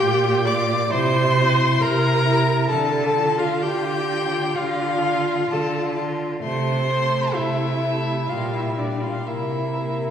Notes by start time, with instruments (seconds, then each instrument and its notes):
Already playing: violin F4 G5, viola G4
0.02 cello A#2
0.45 violin F4 D6, viola D5
0.90 cello C3, violin E4 C6, viola C5
1.35 violin E4
1.80 cello C3, viola A#4, violin A#5
2.25 violin E4
2.69 cello D3, viola A4, violin A5
3.14 violin F4
3.38 viola F4, violin F5
3.62 cello D3, viola G4, violin G5
4.07 violin F4
4.55 cello D3, viola F4, violin F5
5.03 violin F4
5.51 cello D3, viola A4, violin A5
5.95 violin F4
6.42 cello C3, violin A3 C6, viola C5
6.89 violin A3
7.34 cello C3, viola E4, violin E5
7.80 violin A3
8.29 cello A#2, violin G3 F5, viola F4
8.53 viola E4, violin E5
8.78 violin G3 D5, viola D4
9.01 viola F4, violin F5
9.27 cello C3, violin A#3 E5, viola E4
9.80 violin A#3